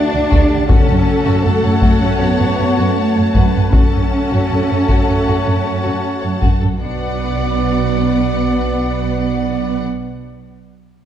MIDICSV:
0, 0, Header, 1, 12, 480
1, 0, Start_track
1, 0, Key_signature, 2, "minor"
1, 0, Tempo, 761421
1, 434, Time_signature, 4, 2, 24, 8
1, 6966, End_track
2, 0, Start_track
2, 0, Title_t, "Violin section"
2, 0, Program_c, 0, 48
2, 0, Note_on_c, 0, 81, 61
2, 409, Note_off_c, 0, 81, 0
2, 444, Note_on_c, 0, 81, 57
2, 2329, Note_off_c, 0, 81, 0
2, 2350, Note_on_c, 0, 81, 50
2, 4137, Note_off_c, 0, 81, 0
2, 4295, Note_on_c, 0, 78, 43
2, 6194, Note_off_c, 0, 78, 0
2, 6966, End_track
3, 0, Start_track
3, 0, Title_t, "Trumpet section"
3, 0, Program_c, 1, 61
3, 0, Note_on_c, 1, 74, 67
3, 333, Note_off_c, 1, 74, 0
3, 440, Note_on_c, 1, 73, 59
3, 2327, Note_off_c, 1, 73, 0
3, 2354, Note_on_c, 1, 73, 48
3, 4062, Note_off_c, 1, 73, 0
3, 4292, Note_on_c, 1, 74, 41
3, 6191, Note_off_c, 1, 74, 0
3, 6966, End_track
4, 0, Start_track
4, 0, Title_t, "Viola section"
4, 0, Program_c, 2, 48
4, 0, Note_on_c, 2, 66, 59
4, 194, Note_off_c, 2, 66, 0
4, 194, Note_on_c, 2, 67, 64
4, 429, Note_on_c, 2, 69, 82
4, 433, Note_off_c, 2, 67, 0
4, 1363, Note_off_c, 2, 69, 0
4, 1382, Note_on_c, 2, 73, 70
4, 1860, Note_off_c, 2, 73, 0
4, 1867, Note_on_c, 2, 73, 54
4, 2103, Note_off_c, 2, 73, 0
4, 2111, Note_on_c, 2, 71, 54
4, 2348, Note_on_c, 2, 69, 61
4, 2351, Note_off_c, 2, 71, 0
4, 4046, Note_off_c, 2, 69, 0
4, 4289, Note_on_c, 2, 71, 47
4, 6188, Note_off_c, 2, 71, 0
4, 6966, End_track
5, 0, Start_track
5, 0, Title_t, "String section"
5, 0, Program_c, 3, 48
5, 0, Note_on_c, 3, 62, 77
5, 0, Note_on_c, 3, 69, 71
5, 0, Note_on_c, 3, 78, 72
5, 407, Note_off_c, 3, 69, 0
5, 407, Note_off_c, 3, 78, 0
5, 408, Note_off_c, 3, 62, 0
5, 434, Note_on_c, 3, 69, 69
5, 436, Note_on_c, 3, 78, 72
5, 437, Note_on_c, 3, 61, 64
5, 437, Note_on_c, 3, 66, 69
5, 2324, Note_off_c, 3, 69, 0
5, 2325, Note_off_c, 3, 66, 0
5, 2325, Note_off_c, 3, 78, 0
5, 2342, Note_off_c, 3, 61, 0
5, 2348, Note_on_c, 3, 66, 52
5, 2348, Note_on_c, 3, 69, 58
5, 2348, Note_on_c, 3, 78, 55
5, 2350, Note_on_c, 3, 61, 56
5, 4264, Note_off_c, 3, 66, 0
5, 4264, Note_off_c, 3, 69, 0
5, 4264, Note_off_c, 3, 78, 0
5, 4265, Note_off_c, 3, 61, 0
5, 4288, Note_on_c, 3, 62, 54
5, 4288, Note_on_c, 3, 78, 57
5, 4290, Note_on_c, 3, 66, 52
5, 4292, Note_on_c, 3, 71, 54
5, 6186, Note_off_c, 3, 78, 0
5, 6187, Note_off_c, 3, 62, 0
5, 6188, Note_off_c, 3, 66, 0
5, 6190, Note_off_c, 3, 71, 0
5, 6966, End_track
6, 0, Start_track
6, 0, Title_t, "Violin section"
6, 0, Program_c, 4, 48
6, 0, Note_on_c, 4, 78, 65
6, 71, Note_on_c, 4, 74, 52
6, 120, Note_off_c, 4, 74, 0
6, 184, Note_on_c, 4, 66, 65
6, 296, Note_on_c, 4, 69, 43
6, 300, Note_off_c, 4, 66, 0
6, 346, Note_off_c, 4, 69, 0
6, 402, Note_off_c, 4, 78, 0
6, 418, Note_on_c, 4, 66, 60
6, 420, Note_on_c, 4, 78, 60
6, 536, Note_off_c, 4, 66, 0
6, 541, Note_on_c, 4, 69, 52
6, 591, Note_off_c, 4, 69, 0
6, 783, Note_on_c, 4, 66, 70
6, 897, Note_off_c, 4, 66, 0
6, 909, Note_on_c, 4, 69, 45
6, 956, Note_off_c, 4, 69, 0
6, 1028, Note_on_c, 4, 73, 44
6, 1076, Note_off_c, 4, 73, 0
6, 1143, Note_on_c, 4, 66, 67
6, 1255, Note_off_c, 4, 66, 0
6, 1265, Note_on_c, 4, 69, 40
6, 1313, Note_off_c, 4, 69, 0
6, 1385, Note_on_c, 4, 66, 53
6, 1497, Note_off_c, 4, 66, 0
6, 1502, Note_on_c, 4, 69, 44
6, 1550, Note_off_c, 4, 69, 0
6, 1626, Note_on_c, 4, 73, 40
6, 1674, Note_off_c, 4, 73, 0
6, 1739, Note_on_c, 4, 66, 58
6, 1854, Note_off_c, 4, 66, 0
6, 1983, Note_on_c, 4, 73, 41
6, 2032, Note_off_c, 4, 73, 0
6, 2108, Note_on_c, 4, 66, 53
6, 2220, Note_off_c, 4, 66, 0
6, 2221, Note_on_c, 4, 69, 47
6, 2271, Note_off_c, 4, 69, 0
6, 2317, Note_off_c, 4, 78, 0
6, 2342, Note_on_c, 4, 78, 52
6, 2344, Note_on_c, 4, 66, 48
6, 2459, Note_off_c, 4, 66, 0
6, 2459, Note_on_c, 4, 69, 33
6, 2509, Note_off_c, 4, 69, 0
6, 2704, Note_on_c, 4, 66, 49
6, 2821, Note_off_c, 4, 66, 0
6, 2827, Note_on_c, 4, 69, 33
6, 2877, Note_off_c, 4, 69, 0
6, 2954, Note_on_c, 4, 73, 39
6, 3003, Note_off_c, 4, 73, 0
6, 3081, Note_on_c, 4, 66, 51
6, 3192, Note_off_c, 4, 66, 0
6, 3196, Note_on_c, 4, 69, 35
6, 3245, Note_off_c, 4, 69, 0
6, 3324, Note_on_c, 4, 66, 47
6, 3433, Note_on_c, 4, 69, 36
6, 3434, Note_off_c, 4, 66, 0
6, 3483, Note_off_c, 4, 69, 0
6, 3557, Note_on_c, 4, 73, 38
6, 3606, Note_off_c, 4, 73, 0
6, 3674, Note_on_c, 4, 66, 45
6, 3791, Note_off_c, 4, 66, 0
6, 3914, Note_on_c, 4, 73, 37
6, 3965, Note_off_c, 4, 73, 0
6, 4038, Note_on_c, 4, 66, 50
6, 4133, Note_off_c, 4, 78, 0
6, 4156, Note_off_c, 4, 66, 0
6, 4161, Note_on_c, 4, 69, 32
6, 4211, Note_off_c, 4, 69, 0
6, 4285, Note_on_c, 4, 74, 51
6, 6184, Note_off_c, 4, 74, 0
6, 6966, End_track
7, 0, Start_track
7, 0, Title_t, "Cello section"
7, 0, Program_c, 5, 48
7, 0, Note_on_c, 5, 62, 84
7, 438, Note_off_c, 5, 62, 0
7, 439, Note_on_c, 5, 61, 75
7, 902, Note_off_c, 5, 61, 0
7, 914, Note_on_c, 5, 57, 65
7, 1268, Note_off_c, 5, 57, 0
7, 1281, Note_on_c, 5, 61, 62
7, 1393, Note_off_c, 5, 61, 0
7, 1396, Note_on_c, 5, 59, 69
7, 1871, Note_off_c, 5, 59, 0
7, 1875, Note_on_c, 5, 57, 59
7, 2354, Note_off_c, 5, 57, 0
7, 2355, Note_on_c, 5, 61, 69
7, 3782, Note_off_c, 5, 61, 0
7, 4287, Note_on_c, 5, 59, 55
7, 6186, Note_off_c, 5, 59, 0
7, 6966, End_track
8, 0, Start_track
8, 0, Title_t, "French horn section"
8, 0, Program_c, 6, 60
8, 0, Note_on_c, 6, 62, 72
8, 427, Note_off_c, 6, 62, 0
8, 436, Note_on_c, 6, 61, 75
8, 901, Note_off_c, 6, 61, 0
8, 923, Note_on_c, 6, 57, 65
8, 1268, Note_on_c, 6, 61, 55
8, 1272, Note_off_c, 6, 57, 0
8, 1386, Note_off_c, 6, 61, 0
8, 1398, Note_on_c, 6, 59, 65
8, 1872, Note_off_c, 6, 59, 0
8, 1873, Note_on_c, 6, 57, 58
8, 2343, Note_on_c, 6, 61, 67
8, 2353, Note_off_c, 6, 57, 0
8, 3776, Note_off_c, 6, 61, 0
8, 4298, Note_on_c, 6, 59, 58
8, 6196, Note_off_c, 6, 59, 0
8, 6966, End_track
9, 0, Start_track
9, 0, Title_t, "Trombone section"
9, 0, Program_c, 7, 61
9, 0, Note_on_c, 7, 50, 76
9, 0, Note_on_c, 7, 57, 70
9, 327, Note_off_c, 7, 50, 0
9, 327, Note_off_c, 7, 57, 0
9, 434, Note_on_c, 7, 57, 69
9, 438, Note_on_c, 7, 54, 65
9, 2324, Note_off_c, 7, 57, 0
9, 2326, Note_off_c, 7, 54, 0
9, 2357, Note_on_c, 7, 54, 61
9, 2361, Note_on_c, 7, 57, 52
9, 4064, Note_off_c, 7, 54, 0
9, 4066, Note_off_c, 7, 57, 0
9, 4296, Note_on_c, 7, 59, 51
9, 4297, Note_on_c, 7, 54, 53
9, 6195, Note_off_c, 7, 59, 0
9, 6196, Note_off_c, 7, 54, 0
9, 6966, End_track
10, 0, Start_track
10, 0, Title_t, "Timpani"
10, 0, Program_c, 8, 47
10, 439, Note_on_c, 8, 42, 61
10, 1124, Note_off_c, 8, 42, 0
10, 4296, Note_on_c, 8, 47, 32
10, 6194, Note_off_c, 8, 47, 0
10, 6966, End_track
11, 0, Start_track
11, 0, Title_t, "Double bass section"
11, 0, Program_c, 10, 48
11, 86, Note_on_c, 10, 38, 49
11, 132, Note_off_c, 10, 38, 0
11, 207, Note_on_c, 10, 38, 72
11, 252, Note_off_c, 10, 38, 0
11, 324, Note_on_c, 10, 38, 51
11, 369, Note_off_c, 10, 38, 0
11, 438, Note_on_c, 10, 42, 72
11, 485, Note_off_c, 10, 42, 0
11, 556, Note_on_c, 10, 42, 45
11, 603, Note_off_c, 10, 42, 0
11, 795, Note_on_c, 10, 42, 61
11, 842, Note_off_c, 10, 42, 0
11, 910, Note_on_c, 10, 42, 47
11, 957, Note_off_c, 10, 42, 0
11, 1027, Note_on_c, 10, 42, 48
11, 1075, Note_off_c, 10, 42, 0
11, 1147, Note_on_c, 10, 42, 67
11, 1194, Note_off_c, 10, 42, 0
11, 1267, Note_on_c, 10, 42, 47
11, 1314, Note_off_c, 10, 42, 0
11, 1388, Note_on_c, 10, 42, 61
11, 1435, Note_off_c, 10, 42, 0
11, 1506, Note_on_c, 10, 42, 40
11, 1554, Note_off_c, 10, 42, 0
11, 1629, Note_on_c, 10, 42, 41
11, 1676, Note_off_c, 10, 42, 0
11, 1748, Note_on_c, 10, 42, 56
11, 1796, Note_off_c, 10, 42, 0
11, 1990, Note_on_c, 10, 42, 41
11, 2037, Note_off_c, 10, 42, 0
11, 2114, Note_on_c, 10, 42, 60
11, 2161, Note_off_c, 10, 42, 0
11, 2237, Note_on_c, 10, 42, 40
11, 2284, Note_off_c, 10, 42, 0
11, 2361, Note_on_c, 10, 42, 56
11, 2407, Note_off_c, 10, 42, 0
11, 2483, Note_on_c, 10, 42, 39
11, 2529, Note_off_c, 10, 42, 0
11, 2722, Note_on_c, 10, 42, 53
11, 2769, Note_off_c, 10, 42, 0
11, 2839, Note_on_c, 10, 42, 36
11, 2886, Note_off_c, 10, 42, 0
11, 2961, Note_on_c, 10, 42, 39
11, 3008, Note_off_c, 10, 42, 0
11, 3078, Note_on_c, 10, 42, 49
11, 3126, Note_off_c, 10, 42, 0
11, 3201, Note_on_c, 10, 42, 39
11, 3249, Note_off_c, 10, 42, 0
11, 3324, Note_on_c, 10, 42, 54
11, 3372, Note_off_c, 10, 42, 0
11, 3442, Note_on_c, 10, 42, 35
11, 3490, Note_off_c, 10, 42, 0
11, 3565, Note_on_c, 10, 42, 39
11, 3613, Note_off_c, 10, 42, 0
11, 3686, Note_on_c, 10, 42, 43
11, 3734, Note_off_c, 10, 42, 0
11, 3929, Note_on_c, 10, 42, 33
11, 3977, Note_off_c, 10, 42, 0
11, 4053, Note_on_c, 10, 42, 48
11, 4101, Note_off_c, 10, 42, 0
11, 4175, Note_on_c, 10, 42, 33
11, 4222, Note_off_c, 10, 42, 0
11, 4286, Note_on_c, 10, 35, 47
11, 6185, Note_off_c, 10, 35, 0
11, 6966, End_track
12, 0, Start_track
12, 0, Title_t, "Taiko and cinematic ensemble drums"
12, 200, Note_on_c, 9, 41, 64
12, 263, Note_off_c, 9, 41, 0
12, 437, Note_on_c, 9, 41, 92
12, 500, Note_off_c, 9, 41, 0
12, 1146, Note_on_c, 9, 41, 68
12, 1209, Note_off_c, 9, 41, 0
12, 2108, Note_on_c, 9, 41, 62
12, 2171, Note_off_c, 9, 41, 0
12, 2350, Note_on_c, 9, 41, 84
12, 2413, Note_off_c, 9, 41, 0
12, 3079, Note_on_c, 9, 41, 57
12, 3142, Note_off_c, 9, 41, 0
12, 4047, Note_on_c, 9, 41, 59
12, 4110, Note_off_c, 9, 41, 0
12, 6966, End_track
0, 0, End_of_file